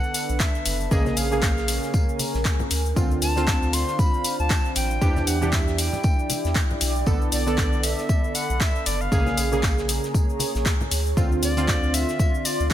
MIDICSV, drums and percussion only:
0, 0, Header, 1, 2, 480
1, 0, Start_track
1, 0, Tempo, 512821
1, 855, Time_signature, 4, 2, 24, 8
1, 11918, End_track
2, 0, Start_track
2, 0, Title_t, "Drums"
2, 34, Note_on_c, 9, 69, 23
2, 127, Note_off_c, 9, 69, 0
2, 135, Note_on_c, 9, 46, 99
2, 136, Note_on_c, 9, 69, 79
2, 138, Note_on_c, 9, 54, 59
2, 228, Note_off_c, 9, 46, 0
2, 230, Note_off_c, 9, 69, 0
2, 232, Note_off_c, 9, 54, 0
2, 273, Note_on_c, 9, 69, 33
2, 367, Note_off_c, 9, 69, 0
2, 374, Note_on_c, 9, 36, 101
2, 374, Note_on_c, 9, 39, 120
2, 375, Note_on_c, 9, 54, 89
2, 375, Note_on_c, 9, 69, 44
2, 377, Note_on_c, 9, 38, 109
2, 467, Note_off_c, 9, 39, 0
2, 468, Note_off_c, 9, 36, 0
2, 468, Note_off_c, 9, 54, 0
2, 468, Note_off_c, 9, 69, 0
2, 471, Note_off_c, 9, 38, 0
2, 513, Note_on_c, 9, 69, 22
2, 607, Note_off_c, 9, 69, 0
2, 613, Note_on_c, 9, 46, 104
2, 615, Note_on_c, 9, 69, 77
2, 617, Note_on_c, 9, 54, 72
2, 707, Note_off_c, 9, 46, 0
2, 708, Note_off_c, 9, 69, 0
2, 710, Note_off_c, 9, 54, 0
2, 752, Note_on_c, 9, 69, 32
2, 846, Note_off_c, 9, 69, 0
2, 855, Note_on_c, 9, 36, 119
2, 855, Note_on_c, 9, 69, 45
2, 862, Note_on_c, 9, 54, 86
2, 948, Note_off_c, 9, 36, 0
2, 948, Note_off_c, 9, 69, 0
2, 955, Note_off_c, 9, 54, 0
2, 989, Note_on_c, 9, 63, 90
2, 993, Note_on_c, 9, 69, 22
2, 996, Note_on_c, 9, 38, 43
2, 1083, Note_off_c, 9, 63, 0
2, 1087, Note_off_c, 9, 69, 0
2, 1090, Note_off_c, 9, 38, 0
2, 1094, Note_on_c, 9, 46, 105
2, 1095, Note_on_c, 9, 69, 80
2, 1097, Note_on_c, 9, 54, 65
2, 1187, Note_off_c, 9, 46, 0
2, 1189, Note_off_c, 9, 69, 0
2, 1190, Note_off_c, 9, 54, 0
2, 1233, Note_on_c, 9, 69, 34
2, 1237, Note_on_c, 9, 63, 57
2, 1327, Note_off_c, 9, 69, 0
2, 1331, Note_off_c, 9, 63, 0
2, 1331, Note_on_c, 9, 54, 81
2, 1335, Note_on_c, 9, 36, 107
2, 1335, Note_on_c, 9, 39, 118
2, 1336, Note_on_c, 9, 69, 43
2, 1337, Note_on_c, 9, 38, 117
2, 1425, Note_off_c, 9, 54, 0
2, 1428, Note_off_c, 9, 36, 0
2, 1428, Note_off_c, 9, 39, 0
2, 1429, Note_off_c, 9, 69, 0
2, 1430, Note_off_c, 9, 38, 0
2, 1473, Note_on_c, 9, 69, 21
2, 1481, Note_on_c, 9, 38, 55
2, 1567, Note_off_c, 9, 69, 0
2, 1574, Note_on_c, 9, 46, 108
2, 1575, Note_off_c, 9, 38, 0
2, 1575, Note_on_c, 9, 69, 80
2, 1577, Note_on_c, 9, 54, 64
2, 1668, Note_off_c, 9, 46, 0
2, 1669, Note_off_c, 9, 69, 0
2, 1671, Note_off_c, 9, 54, 0
2, 1713, Note_on_c, 9, 69, 34
2, 1714, Note_on_c, 9, 38, 45
2, 1807, Note_off_c, 9, 69, 0
2, 1808, Note_off_c, 9, 38, 0
2, 1812, Note_on_c, 9, 54, 76
2, 1815, Note_on_c, 9, 36, 114
2, 1816, Note_on_c, 9, 69, 44
2, 1905, Note_off_c, 9, 54, 0
2, 1909, Note_off_c, 9, 36, 0
2, 1910, Note_off_c, 9, 69, 0
2, 1954, Note_on_c, 9, 69, 22
2, 2047, Note_off_c, 9, 69, 0
2, 2049, Note_on_c, 9, 63, 64
2, 2054, Note_on_c, 9, 46, 103
2, 2055, Note_on_c, 9, 69, 78
2, 2059, Note_on_c, 9, 54, 72
2, 2142, Note_off_c, 9, 63, 0
2, 2148, Note_off_c, 9, 46, 0
2, 2149, Note_off_c, 9, 69, 0
2, 2153, Note_off_c, 9, 54, 0
2, 2192, Note_on_c, 9, 38, 56
2, 2193, Note_on_c, 9, 69, 33
2, 2286, Note_off_c, 9, 38, 0
2, 2287, Note_off_c, 9, 69, 0
2, 2291, Note_on_c, 9, 54, 85
2, 2293, Note_on_c, 9, 38, 101
2, 2294, Note_on_c, 9, 39, 117
2, 2295, Note_on_c, 9, 36, 105
2, 2295, Note_on_c, 9, 69, 43
2, 2385, Note_off_c, 9, 54, 0
2, 2386, Note_off_c, 9, 38, 0
2, 2388, Note_off_c, 9, 36, 0
2, 2388, Note_off_c, 9, 39, 0
2, 2389, Note_off_c, 9, 69, 0
2, 2429, Note_on_c, 9, 64, 93
2, 2432, Note_on_c, 9, 69, 21
2, 2522, Note_off_c, 9, 64, 0
2, 2526, Note_off_c, 9, 69, 0
2, 2532, Note_on_c, 9, 54, 61
2, 2534, Note_on_c, 9, 46, 109
2, 2535, Note_on_c, 9, 69, 78
2, 2625, Note_off_c, 9, 54, 0
2, 2628, Note_off_c, 9, 46, 0
2, 2629, Note_off_c, 9, 69, 0
2, 2673, Note_on_c, 9, 69, 34
2, 2766, Note_off_c, 9, 69, 0
2, 2774, Note_on_c, 9, 36, 113
2, 2775, Note_on_c, 9, 69, 44
2, 2776, Note_on_c, 9, 54, 90
2, 2868, Note_off_c, 9, 36, 0
2, 2869, Note_off_c, 9, 69, 0
2, 2870, Note_off_c, 9, 54, 0
2, 2913, Note_on_c, 9, 69, 21
2, 3006, Note_off_c, 9, 69, 0
2, 3013, Note_on_c, 9, 46, 103
2, 3015, Note_on_c, 9, 69, 73
2, 3017, Note_on_c, 9, 54, 71
2, 3107, Note_off_c, 9, 46, 0
2, 3108, Note_off_c, 9, 69, 0
2, 3111, Note_off_c, 9, 54, 0
2, 3152, Note_on_c, 9, 69, 33
2, 3159, Note_on_c, 9, 42, 41
2, 3246, Note_off_c, 9, 69, 0
2, 3250, Note_on_c, 9, 54, 99
2, 3252, Note_off_c, 9, 42, 0
2, 3254, Note_on_c, 9, 36, 113
2, 3254, Note_on_c, 9, 39, 120
2, 3255, Note_on_c, 9, 69, 39
2, 3256, Note_on_c, 9, 38, 125
2, 3343, Note_off_c, 9, 54, 0
2, 3347, Note_off_c, 9, 39, 0
2, 3348, Note_off_c, 9, 36, 0
2, 3348, Note_off_c, 9, 69, 0
2, 3350, Note_off_c, 9, 38, 0
2, 3393, Note_on_c, 9, 69, 21
2, 3486, Note_off_c, 9, 69, 0
2, 3494, Note_on_c, 9, 46, 105
2, 3495, Note_on_c, 9, 38, 33
2, 3495, Note_on_c, 9, 69, 75
2, 3500, Note_on_c, 9, 54, 61
2, 3587, Note_off_c, 9, 46, 0
2, 3589, Note_off_c, 9, 38, 0
2, 3589, Note_off_c, 9, 69, 0
2, 3593, Note_off_c, 9, 54, 0
2, 3627, Note_on_c, 9, 38, 48
2, 3633, Note_on_c, 9, 69, 32
2, 3721, Note_off_c, 9, 38, 0
2, 3727, Note_off_c, 9, 69, 0
2, 3734, Note_on_c, 9, 36, 127
2, 3735, Note_on_c, 9, 69, 42
2, 3740, Note_on_c, 9, 54, 86
2, 3828, Note_off_c, 9, 36, 0
2, 3829, Note_off_c, 9, 69, 0
2, 3834, Note_off_c, 9, 54, 0
2, 3873, Note_on_c, 9, 69, 21
2, 3967, Note_off_c, 9, 69, 0
2, 3973, Note_on_c, 9, 46, 112
2, 3974, Note_on_c, 9, 69, 76
2, 3979, Note_on_c, 9, 54, 69
2, 4067, Note_off_c, 9, 46, 0
2, 4068, Note_off_c, 9, 69, 0
2, 4072, Note_off_c, 9, 54, 0
2, 4112, Note_on_c, 9, 69, 31
2, 4206, Note_off_c, 9, 69, 0
2, 4214, Note_on_c, 9, 36, 109
2, 4214, Note_on_c, 9, 39, 115
2, 4215, Note_on_c, 9, 69, 44
2, 4216, Note_on_c, 9, 38, 115
2, 4216, Note_on_c, 9, 54, 95
2, 4308, Note_off_c, 9, 36, 0
2, 4308, Note_off_c, 9, 39, 0
2, 4309, Note_off_c, 9, 54, 0
2, 4309, Note_off_c, 9, 69, 0
2, 4310, Note_off_c, 9, 38, 0
2, 4352, Note_on_c, 9, 69, 21
2, 4446, Note_off_c, 9, 69, 0
2, 4450, Note_on_c, 9, 54, 69
2, 4454, Note_on_c, 9, 46, 112
2, 4455, Note_on_c, 9, 69, 76
2, 4543, Note_off_c, 9, 54, 0
2, 4548, Note_off_c, 9, 46, 0
2, 4549, Note_off_c, 9, 69, 0
2, 4593, Note_on_c, 9, 69, 31
2, 4687, Note_off_c, 9, 69, 0
2, 4694, Note_on_c, 9, 54, 91
2, 4695, Note_on_c, 9, 36, 115
2, 4695, Note_on_c, 9, 69, 43
2, 4788, Note_off_c, 9, 36, 0
2, 4788, Note_off_c, 9, 54, 0
2, 4789, Note_off_c, 9, 69, 0
2, 4833, Note_on_c, 9, 63, 80
2, 4833, Note_on_c, 9, 69, 22
2, 4835, Note_on_c, 9, 38, 35
2, 4927, Note_off_c, 9, 63, 0
2, 4927, Note_off_c, 9, 69, 0
2, 4928, Note_off_c, 9, 38, 0
2, 4934, Note_on_c, 9, 46, 107
2, 4935, Note_on_c, 9, 69, 72
2, 4940, Note_on_c, 9, 54, 65
2, 5028, Note_off_c, 9, 46, 0
2, 5029, Note_off_c, 9, 69, 0
2, 5033, Note_off_c, 9, 54, 0
2, 5073, Note_on_c, 9, 69, 32
2, 5077, Note_on_c, 9, 63, 63
2, 5166, Note_off_c, 9, 69, 0
2, 5170, Note_off_c, 9, 63, 0
2, 5170, Note_on_c, 9, 54, 92
2, 5174, Note_on_c, 9, 39, 109
2, 5175, Note_on_c, 9, 36, 106
2, 5175, Note_on_c, 9, 38, 117
2, 5175, Note_on_c, 9, 69, 42
2, 5263, Note_off_c, 9, 54, 0
2, 5268, Note_off_c, 9, 36, 0
2, 5268, Note_off_c, 9, 38, 0
2, 5268, Note_off_c, 9, 39, 0
2, 5269, Note_off_c, 9, 69, 0
2, 5313, Note_on_c, 9, 69, 21
2, 5316, Note_on_c, 9, 38, 45
2, 5407, Note_off_c, 9, 69, 0
2, 5410, Note_off_c, 9, 38, 0
2, 5414, Note_on_c, 9, 46, 107
2, 5416, Note_on_c, 9, 69, 73
2, 5419, Note_on_c, 9, 54, 58
2, 5508, Note_off_c, 9, 46, 0
2, 5509, Note_off_c, 9, 69, 0
2, 5513, Note_off_c, 9, 54, 0
2, 5549, Note_on_c, 9, 64, 79
2, 5552, Note_on_c, 9, 38, 43
2, 5553, Note_on_c, 9, 69, 31
2, 5642, Note_off_c, 9, 64, 0
2, 5645, Note_off_c, 9, 38, 0
2, 5647, Note_off_c, 9, 69, 0
2, 5648, Note_on_c, 9, 54, 90
2, 5655, Note_on_c, 9, 36, 123
2, 5655, Note_on_c, 9, 69, 41
2, 5742, Note_off_c, 9, 54, 0
2, 5748, Note_off_c, 9, 36, 0
2, 5749, Note_off_c, 9, 69, 0
2, 5793, Note_on_c, 9, 69, 20
2, 5887, Note_off_c, 9, 69, 0
2, 5893, Note_on_c, 9, 54, 77
2, 5894, Note_on_c, 9, 46, 107
2, 5895, Note_on_c, 9, 69, 76
2, 5896, Note_on_c, 9, 63, 70
2, 5987, Note_off_c, 9, 46, 0
2, 5987, Note_off_c, 9, 54, 0
2, 5989, Note_off_c, 9, 63, 0
2, 5989, Note_off_c, 9, 69, 0
2, 6033, Note_on_c, 9, 69, 32
2, 6040, Note_on_c, 9, 38, 61
2, 6126, Note_off_c, 9, 69, 0
2, 6133, Note_on_c, 9, 54, 87
2, 6134, Note_off_c, 9, 38, 0
2, 6134, Note_on_c, 9, 39, 107
2, 6135, Note_on_c, 9, 36, 100
2, 6135, Note_on_c, 9, 69, 41
2, 6136, Note_on_c, 9, 38, 113
2, 6227, Note_off_c, 9, 54, 0
2, 6228, Note_off_c, 9, 36, 0
2, 6228, Note_off_c, 9, 39, 0
2, 6229, Note_off_c, 9, 38, 0
2, 6229, Note_off_c, 9, 69, 0
2, 6273, Note_on_c, 9, 69, 21
2, 6279, Note_on_c, 9, 64, 77
2, 6366, Note_off_c, 9, 69, 0
2, 6373, Note_off_c, 9, 64, 0
2, 6373, Note_on_c, 9, 46, 113
2, 6375, Note_on_c, 9, 54, 65
2, 6375, Note_on_c, 9, 69, 77
2, 6467, Note_off_c, 9, 46, 0
2, 6468, Note_off_c, 9, 54, 0
2, 6468, Note_off_c, 9, 69, 0
2, 6512, Note_on_c, 9, 69, 31
2, 6606, Note_off_c, 9, 69, 0
2, 6611, Note_on_c, 9, 54, 83
2, 6615, Note_on_c, 9, 36, 105
2, 6615, Note_on_c, 9, 69, 41
2, 6705, Note_off_c, 9, 54, 0
2, 6708, Note_off_c, 9, 36, 0
2, 6708, Note_off_c, 9, 69, 0
2, 6752, Note_on_c, 9, 69, 21
2, 6846, Note_off_c, 9, 69, 0
2, 6853, Note_on_c, 9, 46, 104
2, 6854, Note_on_c, 9, 69, 74
2, 6855, Note_on_c, 9, 54, 63
2, 6946, Note_off_c, 9, 46, 0
2, 6948, Note_off_c, 9, 54, 0
2, 6948, Note_off_c, 9, 69, 0
2, 6992, Note_on_c, 9, 69, 33
2, 6998, Note_on_c, 9, 42, 42
2, 7086, Note_off_c, 9, 69, 0
2, 7091, Note_off_c, 9, 42, 0
2, 7094, Note_on_c, 9, 38, 127
2, 7094, Note_on_c, 9, 39, 112
2, 7095, Note_on_c, 9, 36, 105
2, 7095, Note_on_c, 9, 69, 40
2, 7098, Note_on_c, 9, 54, 86
2, 7188, Note_off_c, 9, 36, 0
2, 7188, Note_off_c, 9, 38, 0
2, 7188, Note_off_c, 9, 39, 0
2, 7189, Note_off_c, 9, 69, 0
2, 7191, Note_off_c, 9, 54, 0
2, 7233, Note_on_c, 9, 69, 21
2, 7326, Note_off_c, 9, 69, 0
2, 7329, Note_on_c, 9, 38, 37
2, 7331, Note_on_c, 9, 54, 62
2, 7333, Note_on_c, 9, 46, 106
2, 7335, Note_on_c, 9, 69, 74
2, 7423, Note_off_c, 9, 38, 0
2, 7425, Note_off_c, 9, 54, 0
2, 7427, Note_off_c, 9, 46, 0
2, 7428, Note_off_c, 9, 69, 0
2, 7468, Note_on_c, 9, 38, 46
2, 7473, Note_on_c, 9, 69, 30
2, 7562, Note_off_c, 9, 38, 0
2, 7567, Note_off_c, 9, 69, 0
2, 7572, Note_on_c, 9, 54, 77
2, 7575, Note_on_c, 9, 36, 118
2, 7576, Note_on_c, 9, 69, 44
2, 7666, Note_off_c, 9, 54, 0
2, 7668, Note_off_c, 9, 36, 0
2, 7669, Note_off_c, 9, 69, 0
2, 7713, Note_on_c, 9, 69, 21
2, 7807, Note_off_c, 9, 69, 0
2, 7814, Note_on_c, 9, 46, 104
2, 7816, Note_on_c, 9, 54, 60
2, 7816, Note_on_c, 9, 69, 76
2, 7908, Note_off_c, 9, 46, 0
2, 7909, Note_off_c, 9, 54, 0
2, 7909, Note_off_c, 9, 69, 0
2, 7954, Note_on_c, 9, 69, 31
2, 8048, Note_off_c, 9, 69, 0
2, 8050, Note_on_c, 9, 38, 109
2, 8055, Note_on_c, 9, 36, 100
2, 8056, Note_on_c, 9, 39, 109
2, 8057, Note_on_c, 9, 69, 42
2, 8059, Note_on_c, 9, 54, 81
2, 8144, Note_off_c, 9, 38, 0
2, 8148, Note_off_c, 9, 36, 0
2, 8150, Note_off_c, 9, 39, 0
2, 8150, Note_off_c, 9, 69, 0
2, 8153, Note_off_c, 9, 54, 0
2, 8194, Note_on_c, 9, 69, 20
2, 8288, Note_off_c, 9, 69, 0
2, 8295, Note_on_c, 9, 46, 100
2, 8296, Note_on_c, 9, 69, 73
2, 8297, Note_on_c, 9, 54, 71
2, 8389, Note_off_c, 9, 46, 0
2, 8390, Note_off_c, 9, 69, 0
2, 8391, Note_off_c, 9, 54, 0
2, 8435, Note_on_c, 9, 69, 31
2, 8528, Note_off_c, 9, 69, 0
2, 8535, Note_on_c, 9, 36, 107
2, 8537, Note_on_c, 9, 54, 89
2, 8537, Note_on_c, 9, 69, 45
2, 8629, Note_off_c, 9, 36, 0
2, 8630, Note_off_c, 9, 54, 0
2, 8631, Note_off_c, 9, 69, 0
2, 8671, Note_on_c, 9, 63, 86
2, 8675, Note_on_c, 9, 69, 22
2, 8676, Note_on_c, 9, 38, 39
2, 8764, Note_off_c, 9, 63, 0
2, 8768, Note_off_c, 9, 69, 0
2, 8770, Note_off_c, 9, 38, 0
2, 8773, Note_on_c, 9, 54, 69
2, 8775, Note_on_c, 9, 46, 102
2, 8776, Note_on_c, 9, 69, 72
2, 8866, Note_off_c, 9, 54, 0
2, 8869, Note_off_c, 9, 46, 0
2, 8870, Note_off_c, 9, 69, 0
2, 8914, Note_on_c, 9, 69, 31
2, 8918, Note_on_c, 9, 63, 52
2, 9007, Note_off_c, 9, 69, 0
2, 9011, Note_off_c, 9, 63, 0
2, 9015, Note_on_c, 9, 36, 99
2, 9015, Note_on_c, 9, 38, 110
2, 9016, Note_on_c, 9, 39, 107
2, 9017, Note_on_c, 9, 54, 86
2, 9017, Note_on_c, 9, 69, 42
2, 9108, Note_off_c, 9, 38, 0
2, 9109, Note_off_c, 9, 36, 0
2, 9109, Note_off_c, 9, 39, 0
2, 9110, Note_off_c, 9, 54, 0
2, 9110, Note_off_c, 9, 69, 0
2, 9155, Note_on_c, 9, 38, 55
2, 9155, Note_on_c, 9, 69, 21
2, 9248, Note_off_c, 9, 69, 0
2, 9249, Note_off_c, 9, 38, 0
2, 9256, Note_on_c, 9, 46, 104
2, 9257, Note_on_c, 9, 54, 65
2, 9257, Note_on_c, 9, 69, 74
2, 9350, Note_off_c, 9, 46, 0
2, 9350, Note_off_c, 9, 54, 0
2, 9351, Note_off_c, 9, 69, 0
2, 9395, Note_on_c, 9, 69, 31
2, 9396, Note_on_c, 9, 38, 47
2, 9488, Note_off_c, 9, 69, 0
2, 9490, Note_off_c, 9, 38, 0
2, 9495, Note_on_c, 9, 36, 107
2, 9497, Note_on_c, 9, 54, 86
2, 9497, Note_on_c, 9, 69, 45
2, 9589, Note_off_c, 9, 36, 0
2, 9591, Note_off_c, 9, 54, 0
2, 9591, Note_off_c, 9, 69, 0
2, 9635, Note_on_c, 9, 69, 21
2, 9728, Note_off_c, 9, 69, 0
2, 9728, Note_on_c, 9, 63, 68
2, 9731, Note_on_c, 9, 54, 64
2, 9736, Note_on_c, 9, 46, 106
2, 9737, Note_on_c, 9, 69, 78
2, 9821, Note_off_c, 9, 63, 0
2, 9825, Note_off_c, 9, 54, 0
2, 9830, Note_off_c, 9, 46, 0
2, 9831, Note_off_c, 9, 69, 0
2, 9874, Note_on_c, 9, 38, 62
2, 9875, Note_on_c, 9, 69, 35
2, 9968, Note_off_c, 9, 38, 0
2, 9968, Note_off_c, 9, 69, 0
2, 9973, Note_on_c, 9, 54, 87
2, 9975, Note_on_c, 9, 36, 99
2, 9976, Note_on_c, 9, 38, 122
2, 9976, Note_on_c, 9, 39, 115
2, 9977, Note_on_c, 9, 69, 42
2, 10066, Note_off_c, 9, 54, 0
2, 10069, Note_off_c, 9, 36, 0
2, 10069, Note_off_c, 9, 38, 0
2, 10069, Note_off_c, 9, 39, 0
2, 10071, Note_off_c, 9, 69, 0
2, 10115, Note_on_c, 9, 64, 95
2, 10115, Note_on_c, 9, 69, 22
2, 10209, Note_off_c, 9, 64, 0
2, 10209, Note_off_c, 9, 69, 0
2, 10215, Note_on_c, 9, 54, 75
2, 10216, Note_on_c, 9, 46, 103
2, 10217, Note_on_c, 9, 69, 77
2, 10308, Note_off_c, 9, 54, 0
2, 10310, Note_off_c, 9, 46, 0
2, 10311, Note_off_c, 9, 69, 0
2, 10355, Note_on_c, 9, 69, 31
2, 10448, Note_off_c, 9, 69, 0
2, 10455, Note_on_c, 9, 36, 111
2, 10458, Note_on_c, 9, 54, 86
2, 10458, Note_on_c, 9, 69, 44
2, 10549, Note_off_c, 9, 36, 0
2, 10551, Note_off_c, 9, 69, 0
2, 10552, Note_off_c, 9, 54, 0
2, 10595, Note_on_c, 9, 69, 23
2, 10689, Note_off_c, 9, 69, 0
2, 10695, Note_on_c, 9, 46, 101
2, 10697, Note_on_c, 9, 69, 79
2, 10700, Note_on_c, 9, 54, 68
2, 10789, Note_off_c, 9, 46, 0
2, 10790, Note_off_c, 9, 69, 0
2, 10793, Note_off_c, 9, 54, 0
2, 10831, Note_on_c, 9, 42, 46
2, 10834, Note_on_c, 9, 69, 35
2, 10925, Note_off_c, 9, 42, 0
2, 10928, Note_off_c, 9, 69, 0
2, 10934, Note_on_c, 9, 36, 97
2, 10936, Note_on_c, 9, 38, 127
2, 10936, Note_on_c, 9, 39, 113
2, 10936, Note_on_c, 9, 54, 89
2, 10937, Note_on_c, 9, 69, 42
2, 11028, Note_off_c, 9, 36, 0
2, 11029, Note_off_c, 9, 54, 0
2, 11030, Note_off_c, 9, 38, 0
2, 11030, Note_off_c, 9, 39, 0
2, 11031, Note_off_c, 9, 69, 0
2, 11074, Note_on_c, 9, 69, 23
2, 11168, Note_off_c, 9, 69, 0
2, 11175, Note_on_c, 9, 46, 95
2, 11176, Note_on_c, 9, 69, 80
2, 11182, Note_on_c, 9, 54, 65
2, 11268, Note_off_c, 9, 46, 0
2, 11270, Note_off_c, 9, 69, 0
2, 11275, Note_off_c, 9, 54, 0
2, 11314, Note_on_c, 9, 69, 35
2, 11316, Note_on_c, 9, 38, 45
2, 11408, Note_off_c, 9, 69, 0
2, 11409, Note_off_c, 9, 38, 0
2, 11414, Note_on_c, 9, 36, 110
2, 11415, Note_on_c, 9, 54, 83
2, 11416, Note_on_c, 9, 69, 48
2, 11508, Note_off_c, 9, 36, 0
2, 11509, Note_off_c, 9, 54, 0
2, 11509, Note_off_c, 9, 69, 0
2, 11553, Note_on_c, 9, 69, 22
2, 11647, Note_off_c, 9, 69, 0
2, 11654, Note_on_c, 9, 46, 107
2, 11656, Note_on_c, 9, 69, 78
2, 11661, Note_on_c, 9, 54, 66
2, 11748, Note_off_c, 9, 46, 0
2, 11749, Note_off_c, 9, 69, 0
2, 11755, Note_off_c, 9, 54, 0
2, 11793, Note_on_c, 9, 69, 35
2, 11887, Note_off_c, 9, 69, 0
2, 11888, Note_on_c, 9, 38, 125
2, 11918, Note_off_c, 9, 38, 0
2, 11918, End_track
0, 0, End_of_file